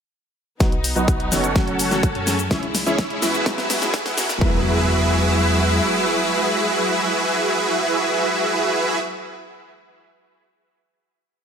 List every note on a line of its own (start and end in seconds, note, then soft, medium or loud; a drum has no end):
0.60 0.94 B1 medium
0.60 0.71 F#3 medium
0.60 2.49 F#3 medium
0.60 0.71 B3 medium
0.60 1.55 B3 medium
0.60 1.55 D#4 medium
0.60 0.73 D#4 medium
0.60 0.72 D#4 medium
0.60 0.73 F#4 medium
0.60 0.72 F#4 medium
0.60 0.73 B4 medium
0.60 0.73 D#5 medium
0.60 0.73 F#5 loud
0.60 kick loud
0.60 snare soft
0.60 closed hi-hat medium
0.60 riser medium
0.60 shaker soft
0.72 closed hi-hat soft
0.84 open hi-hat loud
0.84 shaker medium
0.96 1.29 B1 medium
0.96 1.03 F#3 medium
0.96 1.03 B3 medium
0.96 1.29 D#4 medium
0.96 1.03 D#4 medium
0.96 1.29 F#4 medium
0.96 1.03 F#4 loud
0.96 1.29 B4 medium
0.96 1.29 D#5 medium
0.96 1.29 F#5 loud
0.96 closed hi-hat soft
0.96 shaker soft
1.08 kick loud
1.08 closed hi-hat medium
1.08 shaker soft
1.20 closed hi-hat soft
1.31 1.65 F#1 loud
1.31 1.43 F#3 medium
1.31 1.43 B3 medium
1.31 1.65 C#4 medium
1.31 1.43 D#4 medium
1.31 1.65 F#4 medium
1.31 1.43 F#4 medium
1.31 1.65 A4 medium
1.31 1.65 C#5 medium
1.31 1.65 F#5 loud
1.31 snare medium
1.31 open hi-hat medium
1.31 shaker medium
1.44 closed hi-hat soft
1.44 shaker soft
1.55 1.88 F#3 medium
1.55 1.88 A3 medium
1.55 2.50 C#4 medium
1.55 1.89 C#4 medium
1.55 1.89 F#4 medium
1.55 2.50 A4 medium
1.55 kick loud
1.55 snare medium
1.55 closed hi-hat medium
1.55 shaker soft
1.68 2.13 F#1 medium
1.68 2.12 C#4 medium
1.68 2.12 F#4 medium
1.68 2.12 A4 medium
1.68 2.12 C#5 medium
1.68 2.12 F#5 medium
1.68 closed hi-hat soft
1.79 open hi-hat loud
1.79 shaker medium
1.91 1.98 F#3 medium
1.91 1.98 A3 medium
1.91 1.98 C#4 medium
1.91 1.99 F#4 loud
1.91 snare medium
1.91 closed hi-hat soft
1.91 shaker soft
2.03 kick loud
2.03 closed hi-hat medium
2.03 shaker soft
2.15 2.48 F#2 loud
2.15 2.35 C#4 medium
2.15 2.35 F#4 medium
2.15 2.35 A4 medium
2.15 2.35 C#5 medium
2.15 2.35 G#5 medium
2.15 closed hi-hat soft
2.27 2.34 F#3 medium
2.27 2.34 A3 medium
2.27 2.34 C#4 medium
2.27 2.34 G#4 medium
2.27 snare medium
2.27 open hi-hat medium
2.27 shaker medium
2.39 closed hi-hat soft
2.39 shaker soft
2.50 2.84 C#2 loud
2.50 3.45 C#3 medium
2.50 2.62 E3 medium
2.50 2.62 G#3 medium
2.50 4.39 G#3 medium
2.50 2.63 C#4 medium
2.50 2.62 C#4 medium
2.50 2.63 E4 medium
2.50 4.39 E4 medium
2.50 2.62 E4 medium
2.50 2.63 G#4 medium
2.50 2.63 C#5 medium
2.50 2.63 E5 loud
2.50 kick loud
2.50 snare medium
2.50 closed hi-hat medium
2.50 shaker soft
2.63 closed hi-hat soft
2.75 snare medium
2.75 open hi-hat loud
2.75 shaker medium
2.86 3.20 C#2 medium
2.86 2.93 E3 loud
2.86 2.93 G#3 medium
2.86 3.19 C#4 medium
2.86 2.94 C#4 medium
2.86 3.19 E4 medium
2.86 2.94 E4 loud
2.86 3.19 G#4 medium
2.86 3.19 C#5 medium
2.86 3.19 E5 medium
2.86 closed hi-hat soft
2.86 shaker soft
2.98 kick loud
2.98 snare medium
2.98 closed hi-hat medium
2.98 shaker soft
3.10 closed hi-hat soft
3.22 3.56 E2 loud
3.22 3.33 E3 medium
3.22 3.33 G#3 medium
3.22 3.33 C#4 medium
3.22 3.55 E4 medium
3.22 3.34 E4 medium
3.22 3.55 F#4 medium
3.22 3.55 G#4 medium
3.22 3.55 B4 medium
3.22 3.55 E5 loud
3.22 snare medium
3.22 open hi-hat loud
3.22 shaker medium
3.34 closed hi-hat soft
3.34 shaker soft
3.45 3.79 F#3 medium
3.45 4.40 F#3 medium
3.45 3.79 G#3 medium
3.45 3.79 B3 medium
3.45 3.79 E4 medium
3.45 kick loud
3.45 snare loud
3.45 closed hi-hat medium
3.45 shaker soft
3.58 4.03 E2 medium
3.58 4.03 E4 medium
3.58 4.03 F#4 medium
3.58 4.03 G#4 medium
3.58 4.03 B4 medium
3.58 4.03 E5 medium
3.58 snare medium
3.58 closed hi-hat soft
3.70 snare loud
3.70 open hi-hat loud
3.70 shaker medium
3.81 3.88 F#3 medium
3.81 3.89 G#3 medium
3.81 3.89 B3 medium
3.81 3.89 E4 loud
3.81 snare medium
3.81 closed hi-hat soft
3.81 shaker soft
3.94 kick loud
3.94 snare loud
3.94 closed hi-hat medium
3.94 shaker soft
4.06 4.39 E2 loud
4.06 4.25 E4 medium
4.06 4.25 F#4 medium
4.06 4.25 G#4 medium
4.06 4.25 B4 medium
4.06 4.25 F#5 medium
4.06 snare medium
4.06 closed hi-hat soft
4.17 4.24 F#3 medium
4.17 4.24 G#3 medium
4.17 4.25 B3 medium
4.17 4.25 F#4 medium
4.17 snare loud
4.17 open hi-hat loud
4.17 shaker medium
4.29 snare loud
4.29 closed hi-hat soft
4.29 shaker soft
4.40 5.80 E2 loud
4.40 9.00 F#3 medium
4.40 8.98 F#3 medium
4.40 9.01 G#3 medium
4.40 8.98 G#3 medium
4.40 9.02 B3 medium
4.40 8.98 E4 medium
4.40 9.03 E4 medium
4.40 8.98 F#4 medium
4.40 8.98 G#4 medium
4.40 8.98 B4 medium
4.40 8.98 E5 loud
4.40 kick loud
4.40 impact medium